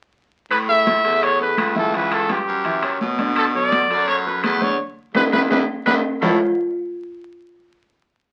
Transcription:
0.51 1.01 A2 medium
0.51 0.59 B4 medium
0.51 high conga soft
0.51 high timbale medium
0.51 claves medium
0.68 0.98 A3 medium
0.68 0.98 G#4 medium
0.68 0.98 A4 medium
0.68 1.25 E5 loud
0.68 high conga soft
0.87 high conga medium
0.87 high timbale medium
1.04 1.54 E2 medium
1.04 1.34 A3 medium
1.04 1.34 G#4 medium
1.04 1.34 A4 medium
1.04 high conga soft
1.04 high timbale medium
1.22 1.41 C#5 medium
1.22 high conga soft
1.22 high timbale medium
1.22 claves medium
1.40 1.69 A3 medium
1.40 1.69 G#4 medium
1.40 1.70 A4 medium
1.40 1.74 B4 medium
1.40 high conga soft
1.57 2.41 C#2 medium
1.57 high conga medium
1.57 high timbale loud
1.57 claves medium
1.75 1.90 E3 medium
1.75 1.90 E4 medium
1.75 1.94 A4 medium
1.75 1.91 E5 medium
1.75 high conga medium
1.94 2.23 E3 medium
1.94 2.23 E4 medium
1.94 2.15 B4 medium
1.94 2.24 E5 medium
1.94 high conga soft
1.94 high timbale medium
2.11 2.34 A4 medium
2.11 high conga soft
2.11 high timbale medium
2.11 claves medium
2.29 2.59 G3 medium
2.29 2.59 G4 medium
2.29 3.02 G4 medium
2.29 2.59 B4 medium
2.29 high conga medium
2.29 high timbale medium
2.47 2.97 F#2 medium
2.47 high conga soft
2.65 2.80 E3 medium
2.65 2.80 E4 medium
2.65 2.80 E5 medium
2.65 high conga soft
2.65 high timbale medium
2.82 3.12 A#3 medium
2.82 3.13 A#4 medium
2.82 3.13 C#5 medium
2.82 high conga soft
2.82 high timbale medium
2.82 claves medium
3.01 3.84 B2 medium
3.01 high conga medium
3.18 3.48 D3 medium
3.18 3.48 D4 medium
3.18 3.48 D5 medium
3.18 high conga medium
3.18 high timbale medium
3.36 3.46 A4 loud
3.36 high conga soft
3.36 high timbale medium
3.36 claves medium
3.54 3.83 F#3 medium
3.54 3.84 F#4 medium
3.54 3.84 A4 medium
3.54 4.05 D5 loud
3.54 high conga soft
3.72 high conga medium
3.72 high timbale medium
3.90 4.40 F#2 medium
3.90 4.19 F#3 medium
3.90 4.19 F#4 medium
3.90 4.19 A4 medium
3.90 high conga soft
3.90 high timbale medium
4.07 4.17 C#5 loud
4.07 high conga soft
4.07 high timbale medium
4.07 claves medium
4.25 4.55 F#3 medium
4.25 4.55 F#4 medium
4.25 4.55 A4 medium
4.25 4.43 B4 medium
4.25 high conga soft
4.43 4.77 E2 medium
4.43 4.64 B4 medium
4.43 high conga medium
4.43 high timbale medium
4.43 claves medium
4.61 4.76 D3 medium
4.61 4.76 D4 medium
4.61 4.80 C#5 medium
4.61 4.76 D5 medium
4.61 high conga medium
5.15 5.28 E2 medium
5.15 5.26 D4 loud
5.15 5.26 E4 medium
5.15 5.27 G#4 medium
5.15 5.24 B4 medium
5.15 high conga medium
5.15 high timbale loud
5.15 claves medium
5.32 5.46 E2 medium
5.32 5.44 D4 medium
5.32 5.44 E4 medium
5.32 5.44 G#4 medium
5.32 5.42 B4 medium
5.32 high conga loud
5.32 high timbale medium
5.32 claves medium
5.50 5.64 E2 medium
5.50 5.62 D4 medium
5.50 5.62 E4 loud
5.50 5.62 G#4 medium
5.50 5.60 B4 medium
5.50 high conga loud
5.50 high timbale medium
5.50 claves medium
5.86 6.00 E2 medium
5.86 5.98 D4 medium
5.86 5.98 E4 medium
5.86 5.98 G#4 medium
5.86 5.95 B4 medium
5.86 high conga loud
5.86 high timbale loud
5.86 claves loud
6.21 6.39 A2 medium
6.21 6.38 A3 medium
6.21 6.39 E4 medium
6.21 6.39 G#4 medium
6.21 6.39 A4 medium
6.21 6.39 B4 medium
6.21 6.39 C#5 medium
6.21 low conga loud
6.21 low timbale medium
6.21 claves medium

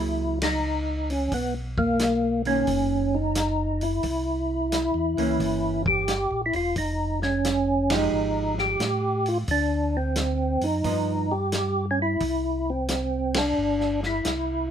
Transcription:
0.00 1.28 C#2 medium
0.00 0.61 F#3 medium
0.00 0.61 A#3 medium
0.00 0.39 E4 medium
0.00 0.61 E4 medium
0.00 0.61 G#4 medium
0.42 1.13 D#4 medium
0.42 snare medium
0.42 ride medium
1.10 1.33 C#4 medium
1.10 open hi-hat soft
1.32 2.64 B1 medium
1.32 1.54 B3 medium
1.32 kick soft
1.32 open hi-hat soft
1.78 2.42 A#3 loud
1.78 kick soft
1.99 snare medium
1.99 closed hi-hat medium
2.45 3.32 D#3 medium
2.45 3.32 A#3 medium
2.45 3.17 C#4 medium
2.45 3.32 C#4 medium
2.45 open hi-hat soft
2.67 4.00 F#1 medium
2.67 kick soft
2.67 open hi-hat soft
3.15 3.84 D#4 medium
3.35 snare medium
3.35 closed hi-hat medium
3.81 5.82 E4 medium
3.81 open hi-hat soft
4.03 4.91 C2 medium
4.03 kick soft
4.03 open hi-hat soft
4.72 snare medium
4.72 closed hi-hat soft
4.94 5.16 E2 medium
5.17 5.39 C#2 medium
5.17 6.04 E3 medium
5.17 6.04 A#3 medium
5.17 6.04 C#4 medium
5.17 open hi-hat soft
5.40 6.27 G1 medium
5.40 kick soft
5.40 open hi-hat soft
5.86 6.41 G4 medium
5.86 kick soft
6.08 snare medium
6.08 closed hi-hat medium
6.31 6.52 A#1 medium
6.46 6.55 E4 medium
6.53 6.75 E1 medium
6.53 6.76 F4 medium
6.53 open hi-hat soft
6.76 8.08 F1 medium
6.76 7.20 D#4 medium
6.76 kick soft
6.76 open hi-hat soft
7.22 7.93 C#4 medium
7.22 snare soft
7.45 snare medium
7.45 closed hi-hat medium
7.90 8.76 F3 medium
7.90 8.77 G#3 medium
7.90 8.55 D#4 medium
7.90 8.77 D#4 medium
7.90 8.77 G4 medium
7.90 snare medium
7.90 ride medium
8.12 8.76 G#1 medium
8.58 9.29 G4 medium
8.58 snare soft
8.80 9.44 A2 medium
8.80 snare medium
8.80 closed hi-hat soft
9.26 9.38 F4 medium
9.26 open hi-hat soft
9.48 10.58 D2 medium
9.48 9.97 D4 medium
9.48 kick soft
9.48 open hi-hat soft
9.97 10.66 C4 medium
10.16 snare medium
10.16 closed hi-hat medium
10.61 10.83 F#2 medium
10.61 11.33 D#4 loud
10.61 open hi-hat soft
10.84 12.17 G2 medium
10.84 11.26 F3 medium
10.84 11.26 B3 medium
10.84 11.27 D#4 medium
10.84 kick soft
10.84 open hi-hat soft
11.31 11.86 G4 loud
11.52 snare medium
11.52 closed hi-hat medium
11.91 11.99 C#4 medium
12.02 12.70 E4 medium
12.20 13.53 C2 medium
12.20 kick soft
12.20 open hi-hat soft
12.70 13.38 C4 medium
12.88 snare medium
12.88 closed hi-hat medium
13.34 14.00 D4 loud
13.34 snare medium
13.34 ride medium
13.57 14.22 G1 medium
13.80 snare soft
14.03 14.71 E4 medium
14.03 snare soft
14.25 14.71 C2 medium
14.25 snare medium
14.25 closed hi-hat medium

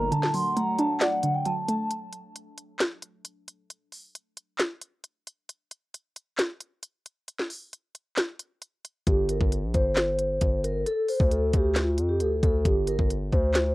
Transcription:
0.00 0.12 G3 medium
0.00 0.12 A3 medium
0.00 0.12 A#3 medium
0.00 0.12 D4 medium
0.00 1.87 D4 medium
0.00 0.12 G4 loud
0.00 1.87 A4 medium
0.00 0.11 A#4 medium
0.00 0.10 A#5 medium
0.11 1.22 D3 loud
0.11 1.89 F#3 medium
0.11 1.89 A3 medium
0.11 0.32 A5 loud
0.11 closed hi-hat medium
0.23 snare medium
0.34 1.45 F#3 medium
0.34 1.42 F#5 medium
0.34 0.55 C6 medium
0.34 open hi-hat medium
0.56 1.67 A3 loud
0.56 0.77 A#5 medium
0.56 closed hi-hat medium
0.79 1.91 D4 medium
0.79 1.00 A5 loud
0.79 closed hi-hat medium
1.00 1.91 D5 loud
1.00 1.33 F#5 medium
1.00 snare loud
1.00 clap medium
1.00 closed hi-hat medium
1.23 1.91 D3 medium
1.23 closed hi-hat medium
1.35 1.45 G5 medium
1.46 1.91 F#3 medium
1.46 1.67 A5 medium
1.46 closed hi-hat medium
1.68 1.91 A3 medium
1.68 1.89 A5 medium
1.68 closed hi-hat medium
1.91 closed hi-hat medium
2.13 closed hi-hat medium
2.36 closed hi-hat medium
2.58 closed hi-hat medium
2.79 snare loud
2.79 clap medium
2.79 closed hi-hat medium
3.02 closed hi-hat medium
3.25 closed hi-hat medium
3.48 closed hi-hat medium
3.70 closed hi-hat medium
3.92 open hi-hat medium
4.15 closed hi-hat medium
4.37 closed hi-hat medium
4.59 snare loud
4.59 clap medium
4.59 closed hi-hat medium
4.81 closed hi-hat medium
5.04 closed hi-hat medium
5.27 closed hi-hat medium
5.49 closed hi-hat medium
5.71 closed hi-hat medium
5.94 closed hi-hat medium
6.16 closed hi-hat medium
6.38 snare loud
6.38 clap medium
6.38 closed hi-hat medium
6.60 closed hi-hat medium
6.83 closed hi-hat medium
7.06 closed hi-hat medium
7.28 closed hi-hat medium
7.39 snare medium
7.50 open hi-hat medium
7.73 closed hi-hat medium
7.95 closed hi-hat medium
8.17 snare loud
8.17 clap medium
8.17 closed hi-hat medium
8.40 closed hi-hat medium
8.62 closed hi-hat medium
8.85 closed hi-hat medium
9.07 9.39 G1 loud
9.07 9.28 G4 medium
9.07 kick loud
9.07 closed hi-hat medium
9.29 9.50 A#4 medium
9.29 closed hi-hat medium
9.41 9.65 G1 loud
9.41 kick medium
9.52 closed hi-hat medium
9.63 9.74 A#1 loud
9.74 10.39 G1 loud
9.74 10.60 C5 medium
9.74 kick medium
9.74 closed hi-hat medium
9.96 snare loud
9.96 clap loud
9.96 closed hi-hat medium
10.19 closed hi-hat medium
10.41 10.84 G1 loud
10.41 kick medium
10.41 closed hi-hat medium
10.64 10.85 A#4 medium
10.64 closed hi-hat medium
10.86 11.07 A4 medium
10.86 closed hi-hat medium
11.08 11.30 C5 medium
11.08 open hi-hat medium
11.20 11.52 D2 loud
11.20 kick medium
11.31 11.52 A4 medium
11.31 closed hi-hat medium
11.53 12.00 D2 loud
11.53 11.74 G4 medium
11.53 kick medium
11.53 closed hi-hat medium
11.75 12.08 F4 medium
11.75 snare loud
11.75 clap medium
11.75 closed hi-hat medium
11.98 12.22 F2 loud
11.98 closed hi-hat medium
12.09 12.20 G4 medium
12.20 12.42 D2 loud
12.20 12.41 A4 medium
12.20 closed hi-hat medium
12.43 12.65 D2 loud
12.43 12.64 A4 medium
12.43 kick loud
12.43 closed hi-hat medium
12.65 12.98 G1 loud
12.65 12.86 G4 medium
12.65 kick loud
12.65 closed hi-hat medium
12.87 13.09 A#4 medium
12.87 closed hi-hat medium
12.99 13.31 G1 loud
12.99 kick medium
13.10 closed hi-hat medium
13.32 13.75 D2 loud
13.32 13.75 C5 medium
13.32 kick medium
13.32 closed hi-hat medium
13.54 snare loud
13.54 clap medium
13.54 closed hi-hat medium

